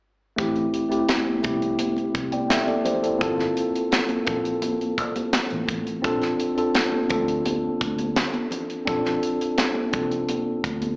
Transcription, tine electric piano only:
0, 0, Header, 1, 2, 480
1, 0, Start_track
1, 0, Tempo, 707547
1, 257, Time_signature, 4, 2, 24, 8
1, 7439, End_track
2, 0, Start_track
2, 0, Title_t, "Tine electric piano"
2, 0, Program_c, 0, 4
2, 247, Note_on_c, 0, 57, 91
2, 256, Note_on_c, 0, 60, 91
2, 261, Note_on_c, 0, 64, 88
2, 266, Note_on_c, 0, 67, 103
2, 394, Control_c, 0, 64, 127
2, 591, Note_off_c, 0, 57, 0
2, 595, Note_off_c, 0, 60, 0
2, 597, Note_off_c, 0, 64, 0
2, 600, Note_off_c, 0, 67, 0
2, 602, Note_on_c, 0, 57, 67
2, 609, Note_on_c, 0, 60, 65
2, 615, Note_on_c, 0, 64, 66
2, 621, Note_on_c, 0, 67, 76
2, 948, Note_off_c, 0, 57, 0
2, 951, Note_off_c, 0, 60, 0
2, 954, Note_off_c, 0, 64, 0
2, 957, Note_off_c, 0, 67, 0
2, 964, Note_on_c, 0, 57, 74
2, 971, Note_on_c, 0, 60, 65
2, 980, Note_on_c, 0, 64, 63
2, 986, Note_on_c, 0, 67, 78
2, 1458, Note_off_c, 0, 64, 0
2, 1461, Note_off_c, 0, 67, 0
2, 1576, Note_on_c, 0, 79, 53
2, 1581, Note_on_c, 0, 74, 46
2, 1690, Note_off_c, 0, 79, 0
2, 1693, Note_off_c, 0, 74, 0
2, 1694, Note_on_c, 0, 76, 59
2, 1699, Note_on_c, 0, 69, 53
2, 1809, Note_off_c, 0, 69, 0
2, 1809, Note_off_c, 0, 76, 0
2, 1813, Note_on_c, 0, 74, 62
2, 1817, Note_on_c, 0, 69, 55
2, 1873, Note_off_c, 0, 57, 0
2, 1876, Note_off_c, 0, 60, 0
2, 1928, Note_off_c, 0, 74, 0
2, 1930, Note_off_c, 0, 69, 0
2, 1932, Note_on_c, 0, 72, 62
2, 1940, Note_on_c, 0, 67, 51
2, 2048, Note_off_c, 0, 72, 0
2, 2052, Note_off_c, 0, 67, 0
2, 2054, Note_on_c, 0, 69, 58
2, 2060, Note_on_c, 0, 64, 48
2, 2160, Note_on_c, 0, 58, 95
2, 2164, Note_on_c, 0, 60, 90
2, 2170, Note_off_c, 0, 69, 0
2, 2174, Note_on_c, 0, 65, 88
2, 2178, Note_on_c, 0, 69, 103
2, 2184, Control_c, 0, 64, 0
2, 2286, Note_off_c, 0, 64, 0
2, 2302, Control_c, 0, 64, 127
2, 2845, Note_off_c, 0, 58, 0
2, 2847, Note_off_c, 0, 60, 0
2, 2852, Note_off_c, 0, 65, 0
2, 2854, Note_off_c, 0, 69, 0
2, 2881, Note_on_c, 0, 58, 71
2, 2889, Note_on_c, 0, 60, 66
2, 2897, Note_on_c, 0, 65, 63
2, 2902, Note_on_c, 0, 69, 79
2, 3791, Note_off_c, 0, 58, 0
2, 3795, Note_off_c, 0, 60, 0
2, 3799, Note_off_c, 0, 65, 0
2, 3802, Note_off_c, 0, 69, 0
2, 4083, Note_on_c, 0, 60, 97
2, 4090, Note_on_c, 0, 62, 88
2, 4100, Note_on_c, 0, 65, 93
2, 4102, Control_c, 0, 64, 0
2, 4106, Note_on_c, 0, 69, 106
2, 4207, Control_c, 0, 64, 127
2, 4428, Note_off_c, 0, 60, 0
2, 4431, Note_off_c, 0, 62, 0
2, 4436, Note_off_c, 0, 65, 0
2, 4439, Note_off_c, 0, 69, 0
2, 4445, Note_on_c, 0, 60, 73
2, 4453, Note_on_c, 0, 62, 61
2, 4462, Note_on_c, 0, 65, 66
2, 4466, Note_on_c, 0, 69, 82
2, 4789, Note_off_c, 0, 60, 0
2, 4793, Note_off_c, 0, 62, 0
2, 4797, Note_off_c, 0, 65, 0
2, 4799, Note_off_c, 0, 69, 0
2, 4804, Note_on_c, 0, 60, 73
2, 4812, Note_on_c, 0, 62, 65
2, 4820, Note_on_c, 0, 65, 65
2, 4826, Note_on_c, 0, 69, 84
2, 5713, Note_off_c, 0, 60, 0
2, 5717, Note_off_c, 0, 62, 0
2, 5721, Note_off_c, 0, 65, 0
2, 5724, Note_off_c, 0, 69, 0
2, 6006, Note_on_c, 0, 60, 91
2, 6012, Note_on_c, 0, 62, 89
2, 6020, Note_on_c, 0, 65, 82
2, 6026, Note_on_c, 0, 69, 113
2, 6688, Note_off_c, 0, 60, 0
2, 6692, Note_off_c, 0, 62, 0
2, 6696, Note_off_c, 0, 65, 0
2, 6698, Note_off_c, 0, 69, 0
2, 6726, Note_on_c, 0, 60, 70
2, 6734, Note_on_c, 0, 62, 64
2, 6741, Note_on_c, 0, 65, 65
2, 6747, Note_on_c, 0, 69, 76
2, 7439, Note_off_c, 0, 60, 0
2, 7439, Note_off_c, 0, 62, 0
2, 7439, Note_off_c, 0, 65, 0
2, 7439, Note_off_c, 0, 69, 0
2, 7439, End_track
0, 0, End_of_file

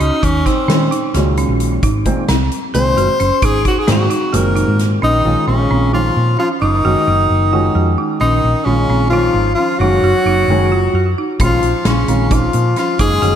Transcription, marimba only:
0, 0, Header, 1, 2, 480
1, 0, Start_track
1, 0, Tempo, 455927
1, 243, Time_signature, 7, 3, 24, 8
1, 14060, End_track
2, 0, Start_track
2, 0, Title_t, "Marimba"
2, 0, Program_c, 0, 12
2, 0, Note_on_c, 0, 61, 76
2, 161, Note_off_c, 0, 61, 0
2, 239, Note_on_c, 0, 63, 82
2, 401, Note_off_c, 0, 63, 0
2, 483, Note_on_c, 0, 63, 85
2, 644, Note_off_c, 0, 63, 0
2, 719, Note_on_c, 0, 61, 80
2, 882, Note_off_c, 0, 61, 0
2, 960, Note_on_c, 0, 63, 79
2, 1122, Note_off_c, 0, 63, 0
2, 1204, Note_on_c, 0, 66, 76
2, 1365, Note_off_c, 0, 66, 0
2, 1451, Note_on_c, 0, 61, 74
2, 1770, Note_off_c, 0, 61, 0
2, 1929, Note_on_c, 0, 63, 91
2, 2249, Note_off_c, 0, 63, 0
2, 2407, Note_on_c, 0, 60, 87
2, 2728, Note_off_c, 0, 60, 0
2, 2883, Note_on_c, 0, 68, 78
2, 3045, Note_off_c, 0, 68, 0
2, 3131, Note_on_c, 0, 66, 69
2, 3290, Note_off_c, 0, 66, 0
2, 3367, Note_on_c, 0, 61, 79
2, 3527, Note_off_c, 0, 61, 0
2, 3608, Note_on_c, 0, 63, 98
2, 3767, Note_off_c, 0, 63, 0
2, 3845, Note_on_c, 0, 63, 75
2, 4005, Note_off_c, 0, 63, 0
2, 4079, Note_on_c, 0, 60, 78
2, 4241, Note_off_c, 0, 60, 0
2, 4318, Note_on_c, 0, 63, 80
2, 4480, Note_off_c, 0, 63, 0
2, 4555, Note_on_c, 0, 66, 78
2, 4719, Note_off_c, 0, 66, 0
2, 4798, Note_on_c, 0, 63, 79
2, 5121, Note_off_c, 0, 63, 0
2, 5287, Note_on_c, 0, 61, 86
2, 5607, Note_off_c, 0, 61, 0
2, 5767, Note_on_c, 0, 61, 72
2, 5926, Note_off_c, 0, 61, 0
2, 6009, Note_on_c, 0, 60, 72
2, 6167, Note_off_c, 0, 60, 0
2, 6247, Note_on_c, 0, 63, 67
2, 6567, Note_off_c, 0, 63, 0
2, 6725, Note_on_c, 0, 61, 67
2, 6885, Note_off_c, 0, 61, 0
2, 6967, Note_on_c, 0, 63, 88
2, 7126, Note_off_c, 0, 63, 0
2, 7210, Note_on_c, 0, 66, 82
2, 7368, Note_off_c, 0, 66, 0
2, 7448, Note_on_c, 0, 63, 67
2, 7767, Note_off_c, 0, 63, 0
2, 7926, Note_on_c, 0, 65, 74
2, 8085, Note_off_c, 0, 65, 0
2, 8160, Note_on_c, 0, 66, 65
2, 8321, Note_off_c, 0, 66, 0
2, 8402, Note_on_c, 0, 63, 71
2, 8563, Note_off_c, 0, 63, 0
2, 8642, Note_on_c, 0, 61, 85
2, 8963, Note_off_c, 0, 61, 0
2, 9129, Note_on_c, 0, 61, 76
2, 9287, Note_off_c, 0, 61, 0
2, 9368, Note_on_c, 0, 60, 79
2, 9527, Note_off_c, 0, 60, 0
2, 9612, Note_on_c, 0, 63, 77
2, 9930, Note_off_c, 0, 63, 0
2, 10088, Note_on_c, 0, 61, 66
2, 10246, Note_off_c, 0, 61, 0
2, 10329, Note_on_c, 0, 63, 83
2, 10487, Note_off_c, 0, 63, 0
2, 10569, Note_on_c, 0, 66, 76
2, 10727, Note_off_c, 0, 66, 0
2, 10806, Note_on_c, 0, 63, 76
2, 11126, Note_off_c, 0, 63, 0
2, 11284, Note_on_c, 0, 65, 75
2, 11444, Note_off_c, 0, 65, 0
2, 11529, Note_on_c, 0, 66, 70
2, 11687, Note_off_c, 0, 66, 0
2, 11773, Note_on_c, 0, 63, 68
2, 11930, Note_off_c, 0, 63, 0
2, 12012, Note_on_c, 0, 61, 89
2, 12330, Note_off_c, 0, 61, 0
2, 12488, Note_on_c, 0, 61, 73
2, 12647, Note_off_c, 0, 61, 0
2, 12724, Note_on_c, 0, 60, 71
2, 12884, Note_off_c, 0, 60, 0
2, 12965, Note_on_c, 0, 63, 80
2, 13286, Note_off_c, 0, 63, 0
2, 13446, Note_on_c, 0, 61, 68
2, 13606, Note_off_c, 0, 61, 0
2, 13680, Note_on_c, 0, 63, 95
2, 13842, Note_off_c, 0, 63, 0
2, 13920, Note_on_c, 0, 66, 72
2, 14060, Note_off_c, 0, 66, 0
2, 14060, End_track
0, 0, End_of_file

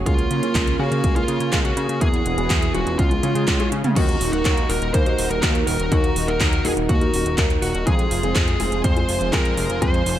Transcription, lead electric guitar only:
0, 0, Header, 1, 2, 480
1, 0, Start_track
1, 0, Tempo, 487805
1, 62, Time_signature, 4, 2, 24, 8
1, 10028, End_track
2, 0, Start_track
2, 0, Title_t, "Lead electric guitar"
2, 0, Program_c, 0, 29
2, 61, Note_on_c, 0, 65, 83
2, 742, Note_off_c, 0, 65, 0
2, 782, Note_on_c, 0, 66, 97
2, 1117, Note_off_c, 0, 66, 0
2, 1142, Note_on_c, 0, 65, 91
2, 1477, Note_off_c, 0, 65, 0
2, 1502, Note_on_c, 0, 65, 95
2, 1551, Note_off_c, 0, 65, 0
2, 1623, Note_on_c, 0, 66, 99
2, 1957, Note_off_c, 0, 66, 0
2, 1982, Note_on_c, 0, 68, 104
2, 2698, Note_off_c, 0, 68, 0
2, 2702, Note_on_c, 0, 66, 93
2, 2938, Note_off_c, 0, 66, 0
2, 2942, Note_on_c, 0, 65, 87
2, 3622, Note_off_c, 0, 65, 0
2, 3899, Note_on_c, 0, 66, 90
2, 4248, Note_off_c, 0, 66, 0
2, 4260, Note_on_c, 0, 66, 94
2, 4618, Note_on_c, 0, 70, 97
2, 4632, Note_off_c, 0, 66, 0
2, 4843, Note_off_c, 0, 70, 0
2, 4858, Note_on_c, 0, 72, 114
2, 5217, Note_off_c, 0, 72, 0
2, 5221, Note_on_c, 0, 70, 101
2, 5326, Note_off_c, 0, 70, 0
2, 5338, Note_on_c, 0, 70, 106
2, 5403, Note_off_c, 0, 70, 0
2, 5578, Note_on_c, 0, 70, 98
2, 5820, Note_on_c, 0, 66, 94
2, 5827, Note_off_c, 0, 70, 0
2, 6178, Note_on_c, 0, 70, 95
2, 6192, Note_off_c, 0, 66, 0
2, 6539, Note_on_c, 0, 68, 88
2, 6551, Note_off_c, 0, 70, 0
2, 6604, Note_off_c, 0, 68, 0
2, 6781, Note_on_c, 0, 66, 83
2, 7228, Note_off_c, 0, 66, 0
2, 7500, Note_on_c, 0, 66, 86
2, 7724, Note_off_c, 0, 66, 0
2, 7742, Note_on_c, 0, 68, 92
2, 8208, Note_off_c, 0, 68, 0
2, 8220, Note_on_c, 0, 68, 96
2, 8667, Note_off_c, 0, 68, 0
2, 8702, Note_on_c, 0, 72, 114
2, 9148, Note_off_c, 0, 72, 0
2, 9184, Note_on_c, 0, 70, 108
2, 9659, Note_off_c, 0, 70, 0
2, 9663, Note_on_c, 0, 72, 94
2, 10028, Note_off_c, 0, 72, 0
2, 10028, End_track
0, 0, End_of_file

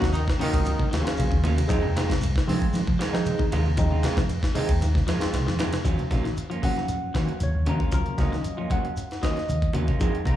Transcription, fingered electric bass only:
0, 0, Header, 1, 3, 480
1, 0, Start_track
1, 0, Tempo, 519031
1, 1574, Time_signature, 4, 2, 24, 8
1, 9584, End_track
2, 0, Start_track
2, 0, Title_t, "Fingered electric bass"
2, 0, Program_c, 0, 33
2, 20, Note_on_c, 0, 39, 79
2, 200, Note_off_c, 0, 39, 0
2, 493, Note_on_c, 0, 37, 92
2, 764, Note_off_c, 0, 37, 0
2, 852, Note_on_c, 0, 39, 103
2, 946, Note_off_c, 0, 39, 0
2, 1087, Note_on_c, 0, 34, 109
2, 1183, Note_off_c, 0, 34, 0
2, 1221, Note_on_c, 0, 39, 88
2, 1489, Note_off_c, 0, 39, 0
2, 1578, Note_on_c, 0, 41, 99
2, 1669, Note_off_c, 0, 41, 0
2, 1697, Note_on_c, 0, 41, 96
2, 1966, Note_off_c, 0, 41, 0
2, 2054, Note_on_c, 0, 36, 99
2, 2235, Note_off_c, 0, 36, 0
2, 2289, Note_on_c, 0, 53, 91
2, 2472, Note_off_c, 0, 53, 0
2, 2529, Note_on_c, 0, 53, 94
2, 2624, Note_off_c, 0, 53, 0
2, 2657, Note_on_c, 0, 53, 96
2, 2745, Note_off_c, 0, 53, 0
2, 2901, Note_on_c, 0, 53, 94
2, 3081, Note_off_c, 0, 53, 0
2, 3261, Note_on_c, 0, 39, 92
2, 3714, Note_off_c, 0, 39, 0
2, 3860, Note_on_c, 0, 41, 86
2, 4040, Note_off_c, 0, 41, 0
2, 4342, Note_on_c, 0, 39, 98
2, 4609, Note_off_c, 0, 39, 0
2, 4693, Note_on_c, 0, 41, 95
2, 4786, Note_off_c, 0, 41, 0
2, 4932, Note_on_c, 0, 36, 108
2, 5025, Note_off_c, 0, 36, 0
2, 5061, Note_on_c, 0, 41, 84
2, 5328, Note_off_c, 0, 41, 0
2, 5413, Note_on_c, 0, 39, 86
2, 5506, Note_off_c, 0, 39, 0
2, 5650, Note_on_c, 0, 34, 73
2, 5832, Note_off_c, 0, 34, 0
2, 6612, Note_on_c, 0, 51, 78
2, 6706, Note_off_c, 0, 51, 0
2, 6848, Note_on_c, 0, 39, 93
2, 6943, Note_off_c, 0, 39, 0
2, 6981, Note_on_c, 0, 39, 89
2, 7067, Note_off_c, 0, 39, 0
2, 7094, Note_on_c, 0, 51, 84
2, 7187, Note_off_c, 0, 51, 0
2, 7329, Note_on_c, 0, 37, 92
2, 7424, Note_off_c, 0, 37, 0
2, 7572, Note_on_c, 0, 37, 79
2, 7754, Note_off_c, 0, 37, 0
2, 8779, Note_on_c, 0, 39, 90
2, 8958, Note_off_c, 0, 39, 0
2, 9016, Note_on_c, 0, 39, 82
2, 9108, Note_off_c, 0, 39, 0
2, 9254, Note_on_c, 0, 41, 92
2, 9347, Note_off_c, 0, 41, 0
2, 9496, Note_on_c, 0, 36, 78
2, 9584, Note_off_c, 0, 36, 0
2, 9584, End_track
3, 0, Start_track
3, 0, Title_t, "Muted fingered electric bass strokes"
3, 976, Note_on_c, 9, 29, 37
3, 1069, Note_off_c, 9, 29, 0
3, 2779, Note_on_c, 9, 29, 39
3, 2872, Note_off_c, 9, 29, 0
3, 4822, Note_on_c, 9, 29, 41
3, 4914, Note_off_c, 9, 29, 0
3, 9584, End_track
0, 0, End_of_file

